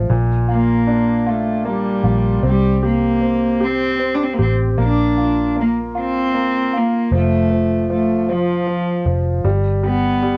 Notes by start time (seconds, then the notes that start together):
Already playing: F3
0.09 A#1 A#2
0.48 A#3 F4
0.87 D4
1.26 A3 F4
1.65 G3 A#3
2.04 A#1 F4
2.43 C2 G3 C4
2.83 A#3 G4
3.22 C4
3.61 C4 G4
4.00 C4
4.14 D4
4.23 C4
4.33 A#3
4.39 A1 C4 G4
4.78 A#1 A#3
4.82 D4
5.17 F4
5.56 A#3
5.61 A#3
5.95 F4
6.00 C4
6.34 A#3
6.73 G1 A#3 F4
7.11 F1 F3 A3
7.51 F3
7.90 F3 A3
8.29 F3
8.67 F3
9.06 F1 F3
9.44 G1 G3
9.83 G3 B3
10.22 G3